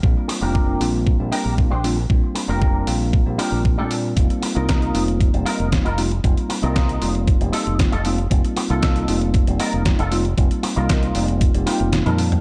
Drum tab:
HH |--o---o---o---o-|--o---o---o---o-|xxoxxxoxxxoxxxox|xxoxxxoxxxoxxxox|
SD |----------------|----------------|----o-------o---|----o-------o---|
T1 |----------------|----------------|----------------|----------------|
T2 |----------------|----------------|----------------|----------------|
BD |o---o---o---o---|o---o---o---o---|o---o---o---o---|o---o---o---o---|

HH |xxoxxxoxxxoxxxox|xxoxxxoxxxoxxxox|
SD |----o-------o---|----o-------o---|
T1 |----------------|------------oo--|
T2 |----------------|---------------o|
BD |o---o---o---o---|o---o---o-------|